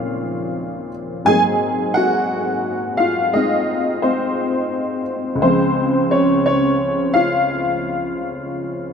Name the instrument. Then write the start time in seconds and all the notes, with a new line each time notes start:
honky-tonk piano
Already playing: D#2 A#2 C#3 D#3 F3 F#3 G#3 C4 C#4 F4 C#5 F5
1.25 G#2 F#3 A#3 G#4 G#5
1.30 C4
1.94 F#4 F#5
2.97 F4 F5
3.33 G#3 C4 D#4 D#5
4.02 C4 C5
5.35 C#2 C#3
5.42 F3 C4 C5
5.46 G#3
6.11 C#4 C#5
6.46 C#4 C#5
7.14 F4 F5